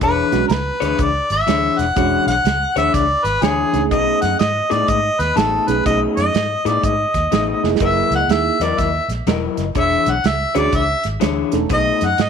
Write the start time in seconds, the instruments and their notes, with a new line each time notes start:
0.01 fingered electric bass E1, clean electric guitar E3 D4 G#4 C#5, harmonica B4, kick, closed hi-hat
0.32 fingered electric bass B1, reed electric piano G#3 C#4 D4 F#4, snare, closed hi-hat
0.48 fingered electric bass C#2, harmonica A#4, snare, closed hi-hat
0.53 harmonica B4
0.80 fingered electric bass D2, clean electric guitar E3 D4 G#4 C#5, snare, closed hi-hat
0.99 fingered electric bass C#2, harmonica D5, kick, closed hi-hat
1.30 fingered electric bass G#1, harmonica E5, snare, closed hi-hat
1.47 fingered electric bass D2, clean electric guitar E3 D4 G#4 C#5, snare, closed hi-hat
1.79 fingered electric bass E1, harmonica F#5, snare, closed hi-hat
1.96 fingered electric bass E1, clean electric guitar E3 D4 G#4 C#5, reed electric piano G#3 C#4 D4 F#4, kick, closed hi-hat
2.27 fingered electric bass B1, harmonica F#5, snare, closed hi-hat
2.44 fingered electric bass C#2, snare, closed hi-hat
2.76 fingered electric bass D2, clean electric guitar E3 D4 G#4 C#5, harmonica E5, snare, closed hi-hat
2.94 fingered electric bass C#2, harmonica D5, kick, snare, closed hi-hat
3.24 fingered electric bass G#1, harmonica B4, snare, closed hi-hat
3.42 fingered electric bass D2, clean electric guitar E3 D4 G#4 C#5, harmonica G#4, snare, closed hi-hat
3.73 fingered electric bass C#2, reed electric piano A3 C#4 D#4 G#4, snare, closed hi-hat
3.91 fingered electric bass B1, clean electric guitar B2 A3 D#4 G#4, harmonica D#5, kick, closed hi-hat
4.21 fingered electric bass F#2, harmonica F#5, snare, closed hi-hat
4.39 fingered electric bass G#2, harmonica D#5, snare, closed hi-hat
4.70 fingered electric bass A2, clean electric guitar B2 A3 D#4 G#4, harmonica D5, snare, closed hi-hat
4.88 fingered electric bass G#2, harmonica D#5, kick, closed hi-hat
5.19 fingered electric bass D#2, harmonica B4, snare, closed hi-hat
5.36 fingered electric bass A1, clean electric guitar B2 A3 D#4 G#4, harmonica A4, snare, closed hi-hat
5.68 fingered electric bass B1, reed electric piano A3 C#4 D#4 G#4, harmonica B4, snare, closed hi-hat
5.86 fingered electric bass B1, clean electric guitar B2 A3 D#4 G#4, harmonica D#5, kick, closed hi-hat
6.17 fingered electric bass F#2, harmonica D#5, snare, closed hi-hat
6.34 fingered electric bass G#2, snare, closed hi-hat
6.65 fingered electric bass A2, clean electric guitar B2 A3 D#4 G#4, harmonica D5, snare, closed hi-hat
6.83 fingered electric bass G#2, harmonica D#5, kick, closed hi-hat
7.14 fingered electric bass D#2, kick, snare, closed hi-hat
7.31 fingered electric bass A1, clean electric guitar B2 A3 D#4 G#4, snare, closed hi-hat
7.63 fingered electric bass F1, reed electric piano A#3 E4 G#4 D#5, snare
7.76 snare
7.80 fingered electric bass F#1, clean electric guitar F#3 E4 A#4 D#5, kick, closed hi-hat
7.85 harmonica E5
8.11 fingered electric bass C#2, snare, closed hi-hat
8.15 harmonica F#5
8.28 fingered electric bass D#2, reed electric piano A#3 D#4 E4 G#4, snare, closed hi-hat
8.33 harmonica E5
8.60 fingered electric bass E2, clean electric guitar F#3 E4 A#4 D#5, harmonica D5, snare, closed hi-hat
8.78 fingered electric bass D#2, harmonica E5, kick, snare, closed hi-hat
9.08 fingered electric bass A#1, snare, closed hi-hat
9.26 fingered electric bass E1, clean electric guitar F#3 E4 A#4 D#5, snare, closed hi-hat
9.57 fingered electric bass F#1, snare, closed hi-hat
9.75 fingered electric bass E1, clean electric guitar E3 D4 G#4 C#5, kick, closed hi-hat
9.79 harmonica E5
10.06 fingered electric bass B1, snare, closed hi-hat
10.11 harmonica F#5
10.24 fingered electric bass C#2, harmonica E5, snare, closed hi-hat
10.55 fingered electric bass D2, clean electric guitar E3 D4 G#4 C#5, reed electric piano C#4 D4 F#4 G#4, harmonica D5, snare, closed hi-hat
10.72 fingered electric bass C#2, harmonica E5, kick, closed hi-hat
11.03 fingered electric bass G#1, snare, closed hi-hat
11.20 fingered electric bass D2, clean electric guitar E3 D4 G#4 C#5, snare, closed hi-hat
11.52 fingered electric bass E1, reed electric piano A3 C#4 D#4 A4, snare, closed hi-hat
11.70 fingered electric bass B1, clean electric guitar B2 A3 D#4 G#4, kick, closed hi-hat
11.74 harmonica D#5
12.01 fingered electric bass F#2, snare, closed hi-hat
12.05 harmonica F#5
12.18 fingered electric bass G#2, harmonica D#5, snare, closed hi-hat